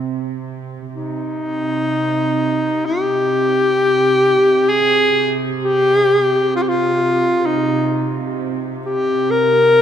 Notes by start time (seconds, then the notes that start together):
Already playing: C3
0.94 C3 D#4
2.85 G4
4.69 G#4
5.64 G4
6.56 F4
6.62 G4
6.69 F4
7.46 D#4
8.86 G4
9.31 A#4